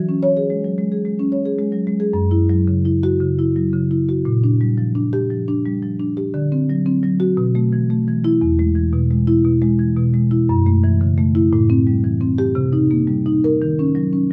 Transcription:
Already playing: E3
0.09 C#4
0.23 C#5
0.37 G#4
0.50 G#3
0.64 F#3
0.78 G#3
0.92 G#4
1.05 G#3
1.19 C#4
1.32 C#5
1.46 G#4
1.59 G#3
1.72 F#3
1.87 G#3
2.00 G#4
2.13 F#2
2.31 E4
2.49 F#3
2.68 C#3
2.85 E4
3.03 F#4
3.20 C#3
3.39 E4
3.56 F#3
3.73 C#3
3.91 E4
4.09 F#4
4.25 A#2
4.44 D4
4.61 G3
4.78 F3
4.95 D4
5.13 G4
5.30 F3
5.48 D4
5.66 G3
5.82 F3
5.99 D4
6.17 G4
6.34 D3
6.52 C4
6.70 F#3
6.86 C4
7.03 F#3
7.20 F#4
7.37 B2
7.55 A3
7.73 E3
7.90 A3
8.08 E3
8.24 E4
8.41 E2
8.59 G#3
8.76 E3
8.93 B2
9.11 G#3
9.27 E4
9.44 B2
9.62 G#3
9.79 E3
9.97 B2
10.14 G#3
10.31 E4
10.49 F#2
10.66 A3
10.84 E3
11.01 C#3
11.18 A3
11.35 E4
11.53 A2
11.70 C4
11.87 G3
12.04 E3
12.21 C4
12.38 G4
12.55 C3
12.73 D#4
12.91 A#3
13.07 G3
13.26 D#4
13.44 A#4
13.62 D#3
13.79 C#4
13.95 F#3
14.13 C#4

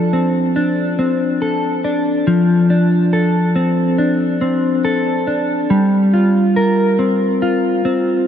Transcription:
Already playing: F3 D4 A4
0.13 C4
0.56 D4
0.99 C4
1.42 A4
1.84 D4
2.27 F3
2.70 D4
3.13 A4
3.56 C4
3.98 D4
4.41 C4
4.85 A4
5.27 D4
5.70 G3
6.14 F4
6.56 A#4
6.99 C4
7.42 F4
7.85 C4

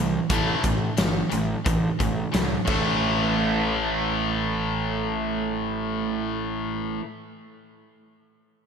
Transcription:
Already playing: C2 A2 E3
0.30 A1 A2 E3 A3, kick, closed hi-hat
0.63 A1 A2 E3, kick, closed hi-hat
0.97 G1 A2 E3, snare, closed hi-hat
1.30 A1 A2 E3, closed hi-hat
1.65 A1 A2 E3, kick, closed hi-hat
1.99 A1 A2 E3, kick, closed hi-hat
2.32 C2 A2 E3, snare, closed hi-hat
2.65 A1 A2 E3, kick, crash
2.69 A3

